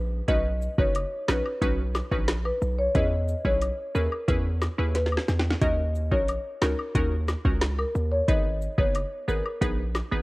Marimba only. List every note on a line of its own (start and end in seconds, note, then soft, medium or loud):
0.28 0.40 D#5 loud
0.79 0.90 C#5 medium
1.29 1.40 B4 medium
2.45 2.57 B4 medium
2.79 2.90 C#5 medium
2.95 3.07 D#5 loud
3.45 3.57 C#5 medium
3.95 4.07 A#4 medium
4.95 5.42 B4 medium
5.62 5.74 D#5 medium
6.12 6.24 C#5 medium
6.62 6.74 A#4 medium
7.78 7.90 A#4 medium
8.12 8.24 C#5 medium
8.28 8.40 D#5 medium
8.78 8.90 C#5 medium
9.28 9.40 A#4 medium